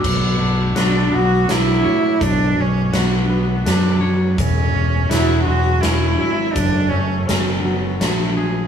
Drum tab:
CC |x-----|------|------|------|
HH |--x-x-|x-x-x-|x-x-x-|x-x-x-|
SD |--o-o-|--o-o-|--o-o-|--o-o-|
BD |o-----|o-----|o-----|o-----|